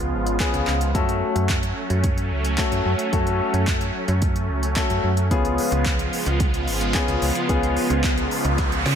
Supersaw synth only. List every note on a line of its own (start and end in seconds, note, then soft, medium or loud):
0.00 0.91 C#3 medium
0.00 0.91 F3 medium
0.00 0.91 G#3 medium
0.00 0.91 B3 medium
0.00 0.91 F4 medium
0.95 5.27 F#3 medium
0.95 5.27 A3 medium
0.95 5.27 C#4 medium
5.31 8.95 C#3 medium
5.31 8.95 F3 medium
5.31 8.95 G#3 medium
5.31 8.95 B3 medium
5.31 8.95 F4 medium